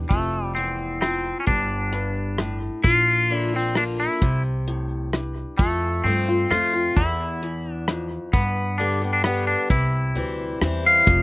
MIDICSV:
0, 0, Header, 1, 5, 480
1, 0, Start_track
1, 0, Key_signature, -1, "major"
1, 0, Tempo, 456969
1, 110, Time_signature, 3, 2, 24, 8
1, 11791, End_track
2, 0, Start_track
2, 0, Title_t, "Clean electric guitar"
2, 0, Program_c, 0, 27
2, 96, Note_on_c, 0, 57, 69
2, 549, Note_off_c, 0, 57, 0
2, 576, Note_on_c, 0, 60, 73
2, 1048, Note_off_c, 0, 60, 0
2, 1061, Note_on_c, 0, 60, 77
2, 1466, Note_off_c, 0, 60, 0
2, 1471, Note_on_c, 0, 61, 64
2, 1542, Note_off_c, 0, 61, 0
2, 1546, Note_on_c, 0, 62, 80
2, 2708, Note_off_c, 0, 62, 0
2, 2979, Note_on_c, 0, 65, 96
2, 3504, Note_off_c, 0, 65, 0
2, 3504, Note_on_c, 0, 64, 96
2, 3728, Note_off_c, 0, 64, 0
2, 3740, Note_on_c, 0, 60, 82
2, 3951, Note_off_c, 0, 60, 0
2, 3960, Note_on_c, 0, 62, 78
2, 4024, Note_off_c, 0, 62, 0
2, 4199, Note_on_c, 0, 64, 74
2, 4643, Note_off_c, 0, 64, 0
2, 5857, Note_on_c, 0, 57, 77
2, 6342, Note_on_c, 0, 60, 73
2, 6361, Note_off_c, 0, 57, 0
2, 6833, Note_on_c, 0, 65, 83
2, 6843, Note_off_c, 0, 60, 0
2, 7316, Note_on_c, 0, 64, 83
2, 7329, Note_off_c, 0, 65, 0
2, 8115, Note_off_c, 0, 64, 0
2, 8115, Note_on_c, 0, 62, 83
2, 8474, Note_off_c, 0, 62, 0
2, 8752, Note_on_c, 0, 59, 76
2, 9222, Note_on_c, 0, 62, 74
2, 9248, Note_off_c, 0, 59, 0
2, 9577, Note_off_c, 0, 62, 0
2, 9590, Note_on_c, 0, 62, 69
2, 9705, Note_off_c, 0, 62, 0
2, 9709, Note_on_c, 0, 59, 73
2, 9945, Note_off_c, 0, 59, 0
2, 9949, Note_on_c, 0, 62, 79
2, 10191, Note_off_c, 0, 62, 0
2, 10195, Note_on_c, 0, 64, 86
2, 11111, Note_off_c, 0, 64, 0
2, 11412, Note_on_c, 0, 77, 78
2, 11791, Note_off_c, 0, 77, 0
2, 11791, End_track
3, 0, Start_track
3, 0, Title_t, "Steel-string acoustic guitar"
3, 0, Program_c, 1, 25
3, 109, Note_on_c, 1, 41, 72
3, 586, Note_off_c, 1, 41, 0
3, 590, Note_on_c, 1, 40, 70
3, 1047, Note_off_c, 1, 40, 0
3, 1078, Note_on_c, 1, 41, 73
3, 1531, Note_off_c, 1, 41, 0
3, 1539, Note_on_c, 1, 43, 74
3, 2010, Note_off_c, 1, 43, 0
3, 2023, Note_on_c, 1, 43, 79
3, 2484, Note_off_c, 1, 43, 0
3, 2502, Note_on_c, 1, 45, 74
3, 2964, Note_off_c, 1, 45, 0
3, 2981, Note_on_c, 1, 46, 76
3, 3466, Note_on_c, 1, 50, 51
3, 3474, Note_on_c, 1, 58, 54
3, 3480, Note_on_c, 1, 62, 62
3, 3487, Note_on_c, 1, 65, 52
3, 3701, Note_off_c, 1, 50, 0
3, 3701, Note_off_c, 1, 65, 0
3, 3704, Note_off_c, 1, 58, 0
3, 3707, Note_off_c, 1, 62, 0
3, 3713, Note_on_c, 1, 65, 46
3, 3730, Note_on_c, 1, 62, 38
3, 3900, Note_off_c, 1, 46, 0
3, 3944, Note_off_c, 1, 65, 0
3, 3948, Note_on_c, 1, 50, 47
3, 3950, Note_off_c, 1, 62, 0
3, 3961, Note_on_c, 1, 58, 54
3, 3962, Note_on_c, 1, 62, 53
3, 3969, Note_on_c, 1, 65, 55
3, 4407, Note_off_c, 1, 50, 0
3, 4414, Note_off_c, 1, 58, 0
3, 4414, Note_off_c, 1, 62, 0
3, 4418, Note_off_c, 1, 65, 0
3, 4433, Note_on_c, 1, 48, 76
3, 4912, Note_on_c, 1, 45, 71
3, 5346, Note_off_c, 1, 48, 0
3, 5370, Note_off_c, 1, 45, 0
3, 5391, Note_on_c, 1, 43, 68
3, 5849, Note_off_c, 1, 43, 0
3, 5876, Note_on_c, 1, 41, 76
3, 6365, Note_on_c, 1, 53, 52
3, 6370, Note_on_c, 1, 57, 54
3, 6374, Note_on_c, 1, 60, 54
3, 6380, Note_on_c, 1, 65, 50
3, 6591, Note_off_c, 1, 53, 0
3, 6591, Note_off_c, 1, 65, 0
3, 6593, Note_off_c, 1, 57, 0
3, 6595, Note_off_c, 1, 60, 0
3, 6604, Note_on_c, 1, 65, 46
3, 6618, Note_on_c, 1, 60, 38
3, 6788, Note_off_c, 1, 41, 0
3, 6830, Note_off_c, 1, 65, 0
3, 6837, Note_off_c, 1, 60, 0
3, 6838, Note_on_c, 1, 53, 51
3, 6844, Note_on_c, 1, 57, 56
3, 6849, Note_on_c, 1, 60, 52
3, 6853, Note_on_c, 1, 65, 50
3, 7060, Note_off_c, 1, 65, 0
3, 7067, Note_off_c, 1, 53, 0
3, 7070, Note_off_c, 1, 57, 0
3, 7072, Note_off_c, 1, 60, 0
3, 7072, Note_on_c, 1, 65, 45
3, 7090, Note_on_c, 1, 60, 41
3, 7304, Note_off_c, 1, 65, 0
3, 7313, Note_off_c, 1, 60, 0
3, 7324, Note_on_c, 1, 40, 76
3, 7789, Note_off_c, 1, 40, 0
3, 7801, Note_on_c, 1, 40, 71
3, 8254, Note_off_c, 1, 40, 0
3, 8281, Note_on_c, 1, 41, 72
3, 8734, Note_off_c, 1, 41, 0
3, 8758, Note_on_c, 1, 43, 80
3, 9237, Note_on_c, 1, 50, 54
3, 9243, Note_on_c, 1, 55, 50
3, 9248, Note_on_c, 1, 59, 57
3, 9251, Note_on_c, 1, 67, 56
3, 9460, Note_off_c, 1, 67, 0
3, 9467, Note_off_c, 1, 50, 0
3, 9469, Note_off_c, 1, 55, 0
3, 9472, Note_off_c, 1, 59, 0
3, 9473, Note_on_c, 1, 67, 47
3, 9493, Note_on_c, 1, 59, 41
3, 9669, Note_off_c, 1, 43, 0
3, 9704, Note_off_c, 1, 67, 0
3, 9714, Note_off_c, 1, 59, 0
3, 9717, Note_on_c, 1, 50, 48
3, 9726, Note_on_c, 1, 55, 45
3, 9727, Note_on_c, 1, 59, 54
3, 9733, Note_on_c, 1, 67, 54
3, 10171, Note_off_c, 1, 50, 0
3, 10176, Note_off_c, 1, 55, 0
3, 10177, Note_off_c, 1, 59, 0
3, 10180, Note_off_c, 1, 67, 0
3, 10199, Note_on_c, 1, 48, 76
3, 10665, Note_on_c, 1, 52, 51
3, 10669, Note_on_c, 1, 55, 47
3, 10677, Note_on_c, 1, 60, 49
3, 10681, Note_on_c, 1, 64, 55
3, 11107, Note_off_c, 1, 48, 0
3, 11125, Note_off_c, 1, 52, 0
3, 11127, Note_off_c, 1, 55, 0
3, 11131, Note_off_c, 1, 60, 0
3, 11133, Note_off_c, 1, 64, 0
3, 11151, Note_on_c, 1, 52, 43
3, 11154, Note_on_c, 1, 55, 48
3, 11165, Note_on_c, 1, 60, 60
3, 11167, Note_on_c, 1, 64, 54
3, 11607, Note_off_c, 1, 52, 0
3, 11608, Note_off_c, 1, 55, 0
3, 11614, Note_off_c, 1, 60, 0
3, 11615, Note_off_c, 1, 64, 0
3, 11630, Note_on_c, 1, 41, 93
3, 11791, Note_off_c, 1, 41, 0
3, 11791, End_track
4, 0, Start_track
4, 0, Title_t, "Upright bass"
4, 0, Program_c, 2, 32
4, 111, Note_on_c, 2, 29, 85
4, 1374, Note_off_c, 2, 29, 0
4, 1551, Note_on_c, 2, 31, 80
4, 2815, Note_off_c, 2, 31, 0
4, 2986, Note_on_c, 2, 34, 84
4, 4252, Note_off_c, 2, 34, 0
4, 4430, Note_on_c, 2, 36, 79
4, 5694, Note_off_c, 2, 36, 0
4, 5875, Note_on_c, 2, 41, 87
4, 6296, Note_off_c, 2, 41, 0
4, 6347, Note_on_c, 2, 43, 78
4, 6758, Note_off_c, 2, 43, 0
4, 6832, Note_on_c, 2, 41, 69
4, 7242, Note_off_c, 2, 41, 0
4, 7314, Note_on_c, 2, 40, 80
4, 8576, Note_off_c, 2, 40, 0
4, 8752, Note_on_c, 2, 43, 75
4, 10015, Note_off_c, 2, 43, 0
4, 10191, Note_on_c, 2, 36, 79
4, 10613, Note_off_c, 2, 36, 0
4, 10669, Note_on_c, 2, 38, 72
4, 11079, Note_off_c, 2, 38, 0
4, 11146, Note_on_c, 2, 40, 70
4, 11556, Note_off_c, 2, 40, 0
4, 11628, Note_on_c, 2, 29, 99
4, 11791, Note_off_c, 2, 29, 0
4, 11791, End_track
5, 0, Start_track
5, 0, Title_t, "Drums"
5, 111, Note_on_c, 9, 36, 89
5, 216, Note_off_c, 9, 36, 0
5, 1072, Note_on_c, 9, 37, 71
5, 1177, Note_off_c, 9, 37, 0
5, 1547, Note_on_c, 9, 36, 85
5, 1652, Note_off_c, 9, 36, 0
5, 2504, Note_on_c, 9, 37, 66
5, 2609, Note_off_c, 9, 37, 0
5, 2987, Note_on_c, 9, 36, 98
5, 3092, Note_off_c, 9, 36, 0
5, 3943, Note_on_c, 9, 37, 71
5, 4048, Note_off_c, 9, 37, 0
5, 4431, Note_on_c, 9, 36, 96
5, 4536, Note_off_c, 9, 36, 0
5, 5391, Note_on_c, 9, 37, 74
5, 5496, Note_off_c, 9, 37, 0
5, 5874, Note_on_c, 9, 36, 106
5, 5979, Note_off_c, 9, 36, 0
5, 6841, Note_on_c, 9, 37, 70
5, 6946, Note_off_c, 9, 37, 0
5, 7317, Note_on_c, 9, 36, 93
5, 7422, Note_off_c, 9, 36, 0
5, 8276, Note_on_c, 9, 37, 78
5, 8381, Note_off_c, 9, 37, 0
5, 8755, Note_on_c, 9, 36, 101
5, 8860, Note_off_c, 9, 36, 0
5, 9706, Note_on_c, 9, 37, 76
5, 9811, Note_off_c, 9, 37, 0
5, 10191, Note_on_c, 9, 36, 97
5, 10296, Note_off_c, 9, 36, 0
5, 11150, Note_on_c, 9, 37, 79
5, 11255, Note_off_c, 9, 37, 0
5, 11625, Note_on_c, 9, 42, 67
5, 11628, Note_on_c, 9, 36, 106
5, 11730, Note_off_c, 9, 42, 0
5, 11733, Note_off_c, 9, 36, 0
5, 11791, End_track
0, 0, End_of_file